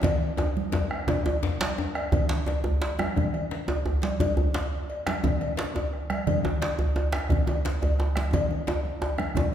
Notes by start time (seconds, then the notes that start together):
0.03 bombo low, cowbell, djembe slap, high conga, djembe tone, djembe bass, low conga
0.22 high conga
0.37 bombo rim, cowbell, djembe tone
0.56 djembe slap, high conga
0.72 cowbell, djembe slap, djembe tone, high conga, djembe bass
0.91 bombo rim, djembe slap
1.07 bombo rim, bombo low, cowbell, djembe tone, low conga
1.26 cowbell, djembe tone, high conga
1.43 djembe slap, djembe bass
1.60 bombo rim, cowbell, djembe slap, high conga
1.78 bombo rim, djembe tone
1.95 bombo rim, cowbell
2.12 bombo low, cowbell, djembe bass, low conga
2.29 djembe slap, djembe tone
2.46 cowbell, djembe slap, djembe tone, high conga
2.64 djembe bass
2.82 cowbell, djembe slap
2.99 bombo rim, djembe slap, djembe tone, high conga
3.16 bombo low, cowbell, djembe bass, low conga
3.34 bombo rim, cowbell, high conga
3.51 djembe slap
3.68 cowbell, djembe tone, high conga
3.86 bombo rim, djembe bass
4.02 cowbell, djembe slap, high conga
4.20 bombo low, cowbell, djembe tone, djembe bass, low conga
4.37 djembe tone, djembe bass
4.54 cowbell, djembe slap, high conga
4.90 cowbell
5.07 bombo rim, djembe slap, djembe tone, high conga
5.24 bombo low, cowbell, djembe tone, djembe bass, low conga
5.41 bombo rim, cowbell, high conga
5.57 djembe slap
5.75 cowbell, djembe tone, high conga
5.93 bombo rim
6.10 bombo rim, cowbell, djembe slap, high conga
6.27 bombo low, cowbell, low conga, djembe bass
6.44 djembe tone
6.62 cowbell, djembe slap, high conga
6.79 djembe bass
6.96 cowbell, djembe tone
7.12 bombo rim, djembe slap, djembe tone
7.29 bombo low, cowbell, djembe bass, low conga
7.46 bombo rim, cowbell, djembe tone, high conga
7.65 djembe slap
7.82 cowbell, high conga, djembe tone, djembe bass
7.99 bombo rim, djembe tone
8.16 bombo rim, djembe slap, high conga
8.33 bombo rim, bombo low, cowbell, djembe slap, djembe tone, djembe bass, low conga
8.51 djembe slap, djembe tone
8.67 cowbell, djembe slap, djembe tone
8.85 high conga
9.02 bombo rim, cowbell, djembe tone
9.18 bombo rim, djembe slap, djembe tone, high conga
9.35 bombo rim, bombo low, cowbell, high conga, djembe tone, djembe bass, low conga